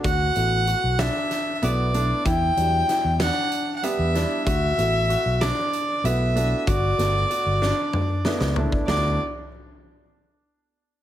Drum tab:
HH |x-x-x-x-x-x-x-|x-x-x-x-x-x-x-|x-x-x-x-x-x-x-|x-x-x---------|
SD |------o-o-----|----o-o-----o-|------o-------|--o---o---oo--|
T2 |--------------|--------------|--------------|--------o-----|
FT |--------------|--------------|--------------|------------o-|
BD |o-------------|o-------------|o-------------|o------------o|

HH |--------------|
SD |o-------------|
T2 |--------------|
FT |--------------|
BD |--------------|